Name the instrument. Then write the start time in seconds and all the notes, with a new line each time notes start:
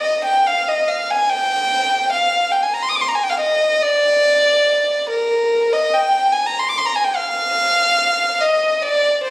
violin
0.01 D#5
0.25 G5
0.46 F5
0.68 D#5
0.88 F5
1.10 G#5
1.29 G5
2.12 F5
2.51 G5
2.62 G#5
2.74 A#5
2.82 C6
2.89 D#6
2.95 D6
3.01 C6
3.08 A#5
3.15 G#5
3.23 G5
3.30 F5
3.40 D#5
3.82 D5
5.10 A#4
5.73 D#5
5.94 G5
6.32 G#5
6.46 A#5
6.59 C6
6.69 D6
6.78 C6
6.86 A#5
6.96 G#5
7.04 G5
7.15 F5
8.41 D#5
8.81 D5
9.24 C5